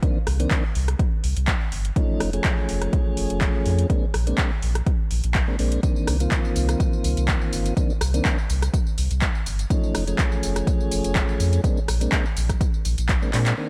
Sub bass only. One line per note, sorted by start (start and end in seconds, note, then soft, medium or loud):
0.27 0.46 C2 loud
0.75 0.95 C2 loud
1.24 1.34 C2 medium
1.37 1.55 C2 medium
1.72 1.91 G1 medium
2.20 2.40 F1 loud
2.69 2.88 F1 loud
3.17 3.27 F1 medium
3.30 3.49 F1 medium
3.66 3.85 F2 medium
4.14 4.33 A#1 loud
4.62 4.82 A#1 loud
5.11 5.21 A#1 medium
5.24 5.42 A#1 loud
5.59 5.78 A#1 loud
6.08 6.27 C2 loud
6.56 6.75 C2 loud
7.04 7.14 C2 medium
7.17 7.36 C2 medium
7.53 7.72 G1 medium
8.01 8.20 C2 loud
8.49 8.69 C2 loud
8.98 9.08 C2 medium
9.11 9.29 C2 medium
9.46 9.66 G1 medium
9.95 10.14 F1 loud
10.43 10.62 F1 medium
10.91 11.01 F1 medium
11.04 11.23 F1 medium
11.40 11.59 F2 medium
11.88 12.07 A#1 loud
12.37 12.56 A#1 medium
12.85 12.95 A#1 loud
12.98 13.16 A#1 medium
13.33 13.53 A#2 medium